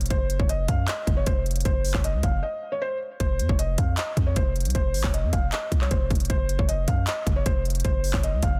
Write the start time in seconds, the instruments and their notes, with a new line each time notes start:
0.01 closed hi-hat
0.06 closed hi-hat
0.10 808-style bass F#1, felt piano C5, kick, closed hi-hat
0.30 closed hi-hat
0.39 808-style bass F#1, felt piano C#5, kick
0.49 felt piano D#5, closed hi-hat
0.59 808-style bass F1
0.68 808-style bass F#2, felt piano F5, kick, closed hi-hat
0.88 felt piano D#5, clap, closed hi-hat
1.07 808-style bass F#1, kick, closed hi-hat
1.17 felt piano C#5
1.26 808-style bass F1, felt piano C5, kick, closed hi-hat
1.46 closed hi-hat
1.51 closed hi-hat
1.56 closed hi-hat
1.60 closed hi-hat
1.65 808-style bass F#1, felt piano C5, kick, closed hi-hat
1.85 open hi-hat
1.94 808-style bass F#1, felt piano C#5, kick, clap
2.04 felt piano D#5, closed hi-hat
2.14 808-style bass C#2
2.23 808-style bass F#1, felt piano F5, kick, closed hi-hat
2.43 felt piano D#5
2.72 felt piano C#5
2.82 felt piano C5
3.20 808-style bass F1, felt piano C5, kick, closed hi-hat
3.39 808-style bass F2, closed hi-hat
3.49 808-style bass F1, felt piano C#5, kick
3.59 felt piano D#5, closed hi-hat
3.78 808-style bass F2, felt piano F5, kick, closed hi-hat
3.97 felt piano D#5, clap, closed hi-hat
4.17 808-style bass F2, kick, closed hi-hat
4.27 felt piano C#5
4.36 808-style bass F1, felt piano C5, kick, closed hi-hat
4.56 closed hi-hat
4.60 closed hi-hat
4.65 808-style bass C2, closed hi-hat
4.70 closed hi-hat
4.75 808-style bass F1, felt piano C5, kick, closed hi-hat
4.94 808-style bass G#1, open hi-hat
5.04 808-style bass F1, felt piano C#5, kick, clap
5.14 felt piano D#5, closed hi-hat
5.23 808-style bass F2
5.33 808-style bass F1, felt piano F5, kick, closed hi-hat
5.52 felt piano D#5, clap, closed hi-hat
5.72 808-style bass C2, kick, closed hi-hat
5.81 felt piano C#5, clap
5.91 808-style bass F1, felt piano C5, kick, closed hi-hat
6.10 808-style bass F1, kick, closed hi-hat
6.15 closed hi-hat
6.20 closed hi-hat
6.25 closed hi-hat
6.30 808-style bass F#1, felt piano C5, kick, closed hi-hat
6.49 closed hi-hat
6.59 808-style bass F#1, felt piano C#5, kick
6.69 felt piano D#5, closed hi-hat
6.78 808-style bass F1
6.88 808-style bass F#2, felt piano F5, kick, closed hi-hat
7.07 felt piano D#5, clap, closed hi-hat
7.27 808-style bass F#1, kick, closed hi-hat
7.36 felt piano C#5
7.46 808-style bass F1, felt piano C5, kick, closed hi-hat
7.65 closed hi-hat
7.70 closed hi-hat
7.75 closed hi-hat
7.80 closed hi-hat
7.84 808-style bass F#1, felt piano C5, kick, closed hi-hat
8.04 open hi-hat
8.13 808-style bass F#1, felt piano C#5, kick, clap
8.23 felt piano D#5, closed hi-hat
8.33 808-style bass C#2
8.43 808-style bass F#1, felt piano F5, kick, closed hi-hat